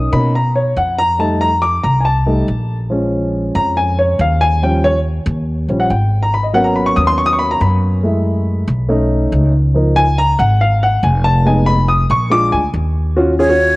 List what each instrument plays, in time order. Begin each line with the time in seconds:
Already playing: upright piano A#3 C#4 D#4
0.12 upright bass B2, upright piano A#3 C#4 D#4 B5
0.35 upright piano A#5
0.56 upright piano C#5
0.77 upright bass F2, upright piano F#5
0.98 upright piano A#5
1.19 upright piano G3 A3 D#4 A5
1.41 upright piano A#5
1.62 upright piano D6
1.84 upright bass C2, upright piano A#5
2.00 upright piano G#5
2.05 upright piano A5
2.26 upright piano G3 A3 D#4
2.48 upright bass A#1
2.90 upright piano F3 G#3 C#4
3.55 upright bass F2, upright piano A#5
3.77 upright piano G#5
3.99 upright piano C#5
4.19 upright bass D#2, upright piano F5
4.41 upright piano G#5
4.62 upright piano F3 G3 C#4 G5
4.84 upright piano C#5
5.26 upright bass D#2
5.69 upright bass A#1, upright piano F3 G3 C#4
5.80 upright piano F#5
5.90 upright bass G#1, upright piano G5
6.23 upright piano A#5
6.34 upright piano B5
6.43 upright piano D#5
6.53 upright piano F#3 A#3 B3 C#4 F#5
6.64 upright piano A#5
6.76 upright piano B5
6.86 upright piano C#6
6.96 upright bass D#2, upright piano D#6
7.07 upright piano C6
7.18 upright piano C#6
7.26 upright piano D#6
7.33 upright piano C#6
7.39 upright piano B5
7.51 upright piano A#5
7.61 upright bass F#2, upright piano B5
8.03 upright piano G#3 A3 E4
8.68 upright bass B1
8.89 upright piano A3 C#4 D#4
9.32 upright bass C#2
9.74 upright piano F3 A#3 D#4
9.96 upright piano G#5
10.18 upright piano A#5
10.39 upright bass G#1, upright piano F#5
10.61 upright piano F5
10.83 upright piano F#5
11.03 upright bass F1, upright piano G#5
11.24 upright piano A5
11.45 upright piano G#3 B3 D#4 G#5
11.66 upright piano B5
11.88 upright piano D#6
12.10 upright bass A#1, upright piano C#6
12.30 upright piano G#3 D4 F4 D6
12.52 upright bass D2, upright piano G#5
12.74 upright bass D#2
13.16 upright piano C#4 F4 F#4
13.39 upright piano C#4 F4 G#4, flute C#5
13.49 upright piano C#4 F4 F#4